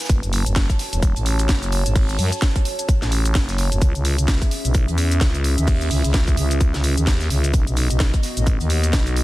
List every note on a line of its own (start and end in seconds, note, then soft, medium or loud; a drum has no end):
0.01 shaker medium
0.05 snare medium
0.05 shaker medium
0.09 0.21 F#1 loud
0.09 3.78 F#4 medium
0.09 3.78 C#5 medium
0.09 3.78 A5 medium
0.09 kick loud
0.09 closed hi-hat medium
0.09 cabasa medium
0.09 shaker medium
0.23 0.44 F#1 loud
0.23 closed hi-hat soft
0.23 cabasa soft
0.33 open hi-hat loud
0.33 shaker medium
0.46 0.67 F#1 loud
0.46 closed hi-hat medium
0.46 cabasa medium
0.56 kick loud
0.56 snare loud
0.56 closed hi-hat medium
0.56 cabasa medium
0.56 shaker medium
0.70 kick medium
0.70 closed hi-hat soft
0.70 cabasa soft
0.79 snare soft
0.79 open hi-hat loud
0.79 shaker medium
0.93 1.14 E1 loud
0.93 closed hi-hat medium
0.93 cabasa medium
1.02 kick loud
1.02 closed hi-hat medium
1.02 cabasa medium
1.02 shaker loud
1.16 1.47 A1 loud
1.16 closed hi-hat soft
1.16 cabasa soft
1.26 open hi-hat loud
1.26 shaker medium
1.39 closed hi-hat soft
1.39 closed hi-hat medium
1.39 cabasa medium
1.49 kick loud
1.49 snare loud
1.49 closed hi-hat medium
1.49 cabasa medium
1.49 shaker medium
1.63 closed hi-hat soft
1.63 cabasa soft
1.72 open hi-hat loud
1.72 shaker medium
1.86 2.17 G#1 loud
1.86 closed hi-hat medium
1.86 cabasa medium
1.96 kick loud
1.96 closed hi-hat medium
1.96 open hi-hat medium
1.96 cabasa medium
2.09 closed hi-hat soft
2.09 cabasa soft
2.19 2.30 F#2 loud
2.19 open hi-hat loud
2.19 shaker medium
2.32 closed hi-hat medium
2.32 cabasa medium
2.41 kick loud
2.41 snare loud
2.41 closed hi-hat medium
2.41 cabasa medium
2.41 shaker medium
2.56 kick medium
2.56 closed hi-hat soft
2.56 cabasa soft
2.65 open hi-hat loud
2.65 shaker medium
2.79 closed hi-hat medium
2.79 cabasa medium
2.89 kick loud
2.89 closed hi-hat medium
2.89 cabasa medium
2.89 shaker medium
3.02 3.34 A1 loud
3.02 snare soft
3.02 cabasa soft
3.12 open hi-hat loud
3.12 shaker medium
3.25 closed hi-hat medium
3.25 cabasa medium
3.35 kick loud
3.35 snare loud
3.35 closed hi-hat medium
3.35 cabasa medium
3.35 shaker medium
3.49 snare medium
3.49 closed hi-hat soft
3.49 cabasa soft
3.58 snare soft
3.58 open hi-hat loud
3.58 shaker medium
3.72 3.80 F#1 loud
3.72 closed hi-hat medium
3.72 cabasa medium
3.81 3.93 C#2 loud
3.81 7.50 C#4 medium
3.81 7.50 G#4 medium
3.81 7.50 E5 medium
3.81 kick loud
3.81 closed hi-hat medium
3.81 cabasa medium
3.81 shaker medium
3.95 4.16 C#2 medium
3.95 closed hi-hat soft
3.95 cabasa soft
4.05 open hi-hat loud
4.05 shaker medium
4.18 4.39 C#2 loud
4.18 closed hi-hat medium
4.18 cabasa medium
4.28 kick loud
4.28 snare loud
4.28 closed hi-hat medium
4.28 cabasa medium
4.28 shaker loud
4.42 kick medium
4.42 closed hi-hat soft
4.42 cabasa soft
4.51 snare soft
4.51 open hi-hat loud
4.51 shaker medium
4.65 4.86 B1 loud
4.65 closed hi-hat medium
4.65 cabasa medium
4.74 kick loud
4.74 closed hi-hat medium
4.74 cabasa medium
4.74 shaker medium
4.88 5.20 E2 loud
4.88 closed hi-hat soft
4.88 cabasa soft
4.98 open hi-hat loud
4.98 shaker medium
5.11 closed hi-hat medium
5.11 closed hi-hat soft
5.11 cabasa medium
5.21 kick loud
5.21 snare loud
5.21 closed hi-hat medium
5.21 cabasa medium
5.21 shaker medium
5.34 closed hi-hat soft
5.34 cabasa soft
5.44 open hi-hat loud
5.44 shaker medium
5.58 5.89 D#2 loud
5.58 closed hi-hat medium
5.58 cabasa medium
5.67 kick loud
5.67 closed hi-hat medium
5.67 open hi-hat medium
5.67 cabasa medium
5.81 closed hi-hat soft
5.81 cabasa soft
5.91 6.02 C#2 loud
5.91 open hi-hat loud
5.91 shaker medium
6.04 6.36 C#2 loud
6.04 closed hi-hat soft
6.04 cabasa medium
6.14 kick loud
6.14 snare loud
6.14 closed hi-hat medium
6.14 cabasa medium
6.14 shaker medium
6.28 kick medium
6.28 closed hi-hat soft
6.28 cabasa soft
6.37 6.72 C#2 loud
6.37 open hi-hat loud
6.37 shaker medium
6.51 closed hi-hat medium
6.51 cabasa medium
6.61 kick loud
6.61 closed hi-hat medium
6.61 cabasa medium
6.61 shaker medium
6.74 6.95 C#2 medium
6.74 snare soft
6.74 closed hi-hat soft
6.74 cabasa soft
6.84 open hi-hat loud
6.84 shaker medium
6.97 7.29 D#2 loud
6.97 closed hi-hat medium
6.97 cabasa medium
7.07 kick loud
7.07 snare loud
7.07 closed hi-hat medium
7.07 cabasa medium
7.07 shaker medium
7.21 snare medium
7.21 closed hi-hat soft
7.21 cabasa soft
7.30 7.52 C#2 loud
7.30 snare soft
7.30 open hi-hat loud
7.30 shaker medium
7.44 closed hi-hat medium
7.44 cabasa medium
7.54 9.23 B3 medium
7.54 9.23 F#4 medium
7.54 9.23 D#5 medium
7.54 kick loud
7.54 closed hi-hat medium
7.54 cabasa medium
7.54 shaker medium
7.67 7.88 B1 loud
7.67 closed hi-hat soft
7.67 cabasa soft
7.77 open hi-hat loud
7.77 shaker medium
7.90 8.12 B1 loud
7.90 closed hi-hat soft
7.90 cabasa medium
8.00 kick loud
8.00 snare loud
8.00 closed hi-hat medium
8.00 cabasa medium
8.00 shaker medium
8.14 kick medium
8.14 closed hi-hat soft
8.14 cabasa soft
8.23 snare soft
8.23 open hi-hat loud
8.23 shaker medium
8.37 8.58 A1 loud
8.37 closed hi-hat medium
8.37 cabasa medium
8.47 kick loud
8.47 closed hi-hat medium
8.47 cabasa medium
8.47 shaker medium
8.60 8.92 D#2 loud
8.60 closed hi-hat soft
8.60 cabasa soft
8.70 open hi-hat loud
8.70 shaker medium
8.84 closed hi-hat medium
8.84 closed hi-hat soft
8.84 cabasa medium
8.93 9.23 B1 loud
8.93 kick loud
8.93 snare loud
8.93 closed hi-hat medium
8.93 cabasa medium
8.93 shaker medium
9.07 closed hi-hat soft
9.07 cabasa soft
9.16 open hi-hat loud
9.16 shaker medium